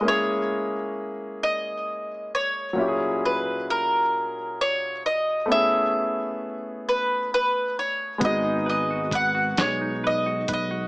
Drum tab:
HH |------|------|------|x-xx-x|
SD |------|------|------|---o--|
BD |------|------|------|o-o--o|